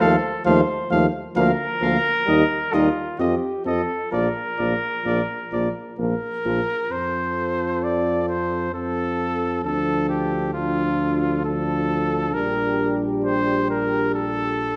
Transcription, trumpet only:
0, 0, Header, 1, 2, 480
1, 0, Start_track
1, 0, Key_signature, -2, "major"
1, 0, Tempo, 904977
1, 722, Time_signature, 3, 2, 24, 8
1, 1205, Tempo, 925926
1, 3608, Key_signature, -1, "major"
1, 4085, Tempo, 903614
1, 7769, End_track
2, 0, Start_track
2, 0, Title_t, "Trumpet"
2, 0, Program_c, 0, 56
2, 3, Note_on_c, 0, 77, 67
2, 88, Note_off_c, 0, 77, 0
2, 240, Note_on_c, 0, 77, 68
2, 325, Note_off_c, 0, 77, 0
2, 481, Note_on_c, 0, 77, 71
2, 566, Note_off_c, 0, 77, 0
2, 721, Note_on_c, 0, 77, 73
2, 806, Note_off_c, 0, 77, 0
2, 964, Note_on_c, 0, 77, 64
2, 1049, Note_off_c, 0, 77, 0
2, 1208, Note_on_c, 0, 75, 66
2, 1291, Note_off_c, 0, 75, 0
2, 1445, Note_on_c, 0, 75, 59
2, 1528, Note_off_c, 0, 75, 0
2, 1683, Note_on_c, 0, 75, 56
2, 1766, Note_off_c, 0, 75, 0
2, 1927, Note_on_c, 0, 75, 58
2, 2009, Note_off_c, 0, 75, 0
2, 2167, Note_on_c, 0, 74, 57
2, 2250, Note_off_c, 0, 74, 0
2, 2404, Note_on_c, 0, 74, 49
2, 2487, Note_off_c, 0, 74, 0
2, 2651, Note_on_c, 0, 74, 55
2, 2734, Note_off_c, 0, 74, 0
2, 2893, Note_on_c, 0, 74, 49
2, 2976, Note_off_c, 0, 74, 0
2, 3132, Note_on_c, 0, 70, 69
2, 3612, Note_on_c, 0, 72, 60
2, 3620, Note_off_c, 0, 70, 0
2, 4089, Note_on_c, 0, 74, 57
2, 4097, Note_off_c, 0, 72, 0
2, 4326, Note_off_c, 0, 74, 0
2, 4329, Note_on_c, 0, 72, 53
2, 4565, Note_off_c, 0, 72, 0
2, 4572, Note_on_c, 0, 69, 63
2, 5042, Note_off_c, 0, 69, 0
2, 5050, Note_on_c, 0, 69, 62
2, 5285, Note_off_c, 0, 69, 0
2, 5289, Note_on_c, 0, 67, 52
2, 5524, Note_off_c, 0, 67, 0
2, 5526, Note_on_c, 0, 65, 63
2, 5997, Note_off_c, 0, 65, 0
2, 6008, Note_on_c, 0, 69, 68
2, 6483, Note_on_c, 0, 70, 63
2, 6491, Note_off_c, 0, 69, 0
2, 6819, Note_off_c, 0, 70, 0
2, 6964, Note_on_c, 0, 72, 71
2, 7189, Note_off_c, 0, 72, 0
2, 7206, Note_on_c, 0, 70, 66
2, 7438, Note_off_c, 0, 70, 0
2, 7441, Note_on_c, 0, 69, 70
2, 7769, Note_off_c, 0, 69, 0
2, 7769, End_track
0, 0, End_of_file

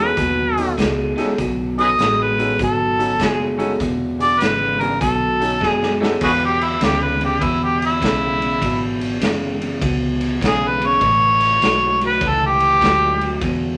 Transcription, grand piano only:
0, 0, Header, 1, 2, 480
1, 0, Start_track
1, 0, Key_signature, 4, "major"
1, 0, Tempo, 601805
1, 1107, Time_signature, 4, 2, 24, 8
1, 10984, End_track
2, 0, Start_track
2, 0, Title_t, "Grand piano"
2, 0, Program_c, 0, 0
2, 459, Note_on_c, 0, 66, 61
2, 460, Note_on_c, 0, 63, 69
2, 464, Note_on_c, 0, 61, 65
2, 467, Note_on_c, 0, 69, 82
2, 542, Note_off_c, 0, 63, 0
2, 542, Note_off_c, 0, 66, 0
2, 544, Note_off_c, 0, 61, 0
2, 545, Note_off_c, 0, 69, 0
2, 937, Note_on_c, 0, 63, 83
2, 942, Note_on_c, 0, 61, 83
2, 944, Note_on_c, 0, 66, 75
2, 944, Note_on_c, 0, 69, 101
2, 1022, Note_off_c, 0, 63, 0
2, 1024, Note_off_c, 0, 61, 0
2, 1026, Note_off_c, 0, 66, 0
2, 1026, Note_off_c, 0, 69, 0
2, 1419, Note_on_c, 0, 61, 69
2, 1422, Note_on_c, 0, 63, 61
2, 1423, Note_on_c, 0, 66, 59
2, 1423, Note_on_c, 0, 69, 80
2, 1505, Note_off_c, 0, 61, 0
2, 1506, Note_off_c, 0, 63, 0
2, 1506, Note_off_c, 0, 66, 0
2, 1507, Note_off_c, 0, 69, 0
2, 1902, Note_on_c, 0, 63, 59
2, 1903, Note_on_c, 0, 66, 60
2, 1905, Note_on_c, 0, 61, 62
2, 1908, Note_on_c, 0, 69, 75
2, 1987, Note_off_c, 0, 63, 0
2, 1988, Note_off_c, 0, 66, 0
2, 1989, Note_off_c, 0, 61, 0
2, 1990, Note_off_c, 0, 69, 0
2, 2382, Note_on_c, 0, 61, 73
2, 2382, Note_on_c, 0, 63, 70
2, 2384, Note_on_c, 0, 66, 65
2, 2386, Note_on_c, 0, 69, 83
2, 2469, Note_off_c, 0, 61, 0
2, 2469, Note_off_c, 0, 63, 0
2, 2470, Note_off_c, 0, 66, 0
2, 2470, Note_off_c, 0, 69, 0
2, 2854, Note_on_c, 0, 61, 88
2, 2856, Note_on_c, 0, 66, 78
2, 2859, Note_on_c, 0, 63, 77
2, 2859, Note_on_c, 0, 69, 100
2, 2945, Note_off_c, 0, 61, 0
2, 2947, Note_off_c, 0, 66, 0
2, 2948, Note_off_c, 0, 63, 0
2, 2948, Note_off_c, 0, 69, 0
2, 3338, Note_on_c, 0, 59, 61
2, 3342, Note_on_c, 0, 62, 59
2, 3343, Note_on_c, 0, 68, 73
2, 3346, Note_on_c, 0, 66, 61
2, 3428, Note_off_c, 0, 59, 0
2, 3430, Note_off_c, 0, 62, 0
2, 3431, Note_off_c, 0, 68, 0
2, 3432, Note_off_c, 0, 66, 0
2, 3834, Note_on_c, 0, 59, 66
2, 3834, Note_on_c, 0, 66, 63
2, 3835, Note_on_c, 0, 62, 55
2, 3835, Note_on_c, 0, 68, 70
2, 3917, Note_off_c, 0, 59, 0
2, 3917, Note_off_c, 0, 62, 0
2, 3917, Note_off_c, 0, 66, 0
2, 3917, Note_off_c, 0, 68, 0
2, 4311, Note_on_c, 0, 61, 74
2, 4315, Note_on_c, 0, 63, 72
2, 4315, Note_on_c, 0, 69, 83
2, 4317, Note_on_c, 0, 66, 65
2, 4395, Note_off_c, 0, 61, 0
2, 4398, Note_off_c, 0, 63, 0
2, 4398, Note_off_c, 0, 69, 0
2, 4399, Note_off_c, 0, 66, 0
2, 4791, Note_on_c, 0, 61, 88
2, 4791, Note_on_c, 0, 63, 83
2, 4795, Note_on_c, 0, 69, 99
2, 4798, Note_on_c, 0, 66, 75
2, 4875, Note_off_c, 0, 63, 0
2, 4876, Note_off_c, 0, 61, 0
2, 4878, Note_off_c, 0, 69, 0
2, 4879, Note_off_c, 0, 66, 0
2, 10984, End_track
0, 0, End_of_file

